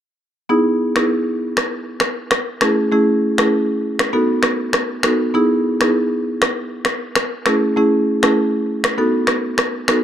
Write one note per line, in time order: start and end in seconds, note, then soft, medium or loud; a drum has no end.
0.49 0.92 B3 medium
0.49 0.93 D#4 medium
0.49 0.93 E4 medium
0.49 0.93 G#4 loud
0.96 1.18 B3 medium
0.96 1.18 D#4 medium
0.96 1.18 E4 medium
0.96 1.19 G#4 medium
0.96 finger snap medium
0.96 cross-stick medium
1.57 finger snap medium
1.57 cross-stick medium
2.00 finger snap medium
2.00 cross-stick medium
2.31 finger snap medium
2.31 cross-stick medium
2.61 2.90 A3 medium
2.61 2.90 C#4 medium
2.61 2.90 E4 medium
2.61 2.90 G#4 medium
2.61 finger snap medium
2.61 cross-stick medium
2.92 3.35 A3 medium
2.92 3.35 C#4 medium
2.92 3.35 E4 medium
2.92 3.35 G#4 loud
3.38 3.61 A3 medium
3.38 3.61 C#4 medium
3.38 3.61 E4 medium
3.38 3.61 G#4 medium
3.38 finger snap medium
3.38 cross-stick medium
3.99 finger snap medium
3.99 cross-stick medium
4.13 4.97 B3 medium
4.13 4.98 D#4 medium
4.13 4.98 F#4 medium
4.13 4.98 A4 loud
4.43 finger snap medium
4.43 cross-stick medium
4.73 finger snap medium
4.73 cross-stick medium
5.03 5.32 B3 medium
5.03 5.32 D#4 medium
5.03 5.32 F#4 medium
5.03 5.32 A4 medium
5.03 finger snap medium
5.03 cross-stick medium
5.34 5.77 B3 medium
5.34 5.77 D#4 medium
5.34 5.78 E4 medium
5.34 5.78 G#4 loud
5.81 6.03 B3 medium
5.81 6.03 D#4 medium
5.81 6.03 E4 medium
5.81 6.03 G#4 medium
5.81 finger snap medium
5.81 cross-stick medium
6.42 finger snap medium
6.42 cross-stick loud
6.85 finger snap medium
6.85 cross-stick medium
7.15 finger snap medium
7.15 cross-stick medium
7.46 7.75 A3 medium
7.46 7.75 C#4 medium
7.46 7.75 E4 medium
7.46 7.75 G#4 medium
7.46 finger snap medium
7.46 cross-stick medium
7.76 8.20 A3 medium
7.76 8.20 C#4 medium
7.76 8.20 E4 medium
7.76 8.20 G#4 loud
8.23 8.46 A3 medium
8.23 8.46 C#4 medium
8.23 8.46 E4 medium
8.23 8.46 G#4 medium
8.23 finger snap medium
8.23 cross-stick medium
8.84 finger snap medium
8.84 cross-stick medium
8.98 9.82 B3 medium
8.98 9.82 D#4 medium
8.98 9.82 F#4 medium
8.98 9.83 A4 medium
9.27 finger snap medium
9.27 cross-stick medium
9.58 finger snap medium
9.58 cross-stick medium
9.88 10.04 B3 medium
9.88 10.04 D#4 medium
9.88 10.04 F#4 medium
9.88 10.04 A4 medium
9.88 finger snap medium
9.88 cross-stick medium